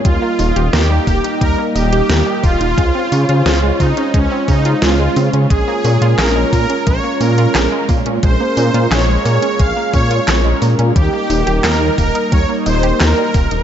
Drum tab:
HH |x-oxx-oxx-oxx-ox|x-oxx-oxx-oxx-ox|x-oxx-oxx-oxx-ox|x-oxx-oxx-oxx-ox|
CP |----------------|----------------|----x-------x---|----x-------x---|
SD |----o-------o---|----o-------o---|----o-------o---|----o-------o---|
BD |o-----o-o-----o-|o-----o-o-o-----|o-----o-o-----o-|o-------o-o-----|

HH |x-oxx-oxx-oxx-ox|
CP |----x-------x---|
SD |----o-------o---|
BD |o-----o-o-----o-|